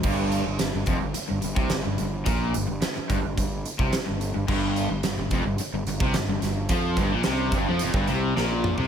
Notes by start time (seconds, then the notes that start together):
0.03 G1 G2, kick, crash
0.32 closed hi-hat
0.47 G1 G2
0.58 G1 G2, snare, closed hi-hat
0.73 G1 G2
0.86 F1 F2, kick, closed hi-hat
1.00 G1 G2
1.14 muted overdriven electric guitar stroke, muted fingered electric bass stroke, closed hi-hat
1.28 G1 G2
1.41 G1 G2, closed hi-hat
1.55 C2 C3, kick
1.69 G1 G2, snare, closed hi-hat
1.83 G2
1.87 G1
1.98 G1 G2, closed hi-hat
2.25 A#1 A#2, kick, closed hi-hat
2.54 G1 G2, closed hi-hat
2.67 G1 G2
2.81 muted overdriven electric guitar stroke, snare, closed hi-hat
2.86 muted fingered electric bass stroke
2.96 muted overdriven electric guitar stroke, muted fingered electric bass stroke
3.10 G1 G2, kick, closed hi-hat
3.22 G1 G2
3.37 G1 G2, kick, closed hi-hat
3.65 closed hi-hat
3.79 C2 C3, kick
3.92 muted overdriven electric guitar stroke, muted fingered electric bass stroke, snare, closed hi-hat
4.06 G1 G2
4.21 closed hi-hat
4.34 G1 G2
4.48 G1 G2, kick, crash
4.76 closed hi-hat
4.91 G1 G2
5.03 G1 G2, snare, closed hi-hat
5.18 G1 G2
5.30 F1 F2, kick, closed hi-hat
5.45 G1 G2
5.58 muted fingered electric bass stroke, muted overdriven electric guitar stroke, muted distorted electric guitar stroke, closed hi-hat
5.73 G1 G2
5.87 G1 G2, closed hi-hat
6.00 C2 C3, kick
6.13 G1 G2, snare, closed hi-hat
6.28 G1 G2
6.41 G1 G2, snare, closed hi-hat
6.69 F2 F3, kick, closed hi-hat
6.97 G1 G2, kick, closed hi-hat
7.12 A#1 A#2
7.23 C2 C3, snare, closed hi-hat
7.52 G1 G2, kick, closed hi-hat
7.68 F2 F3
7.79 F1 F2, closed hi-hat
7.94 G1 G2, kick
8.08 C2 C3, closed hi-hat
8.36 A#1 A#2, snare
8.64 mid tom
8.78 C2 C3, floor tom